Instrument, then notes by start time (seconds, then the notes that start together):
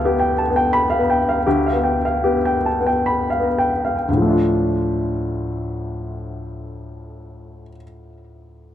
grand piano
Already playing: D2 B3 G4 A4 F5
0.05 B3 G4
0.20 G5
0.38 A5
0.50 B3
0.56 G5
0.73 B5
0.90 F5
0.98 B3
1.10 G5
1.29 F5
1.46 D2 G4
1.66 F5
1.73 B3
1.84 G5
2.05 F5
2.24 B3 G4
2.45 G5
2.66 A5
2.80 B3
2.87 G5
3.06 B5
3.30 F5
3.40 B3
3.58 G5
3.85 F5
4.08 D2
4.13 A2
4.17 F3
4.22 A3
4.27 D4 F4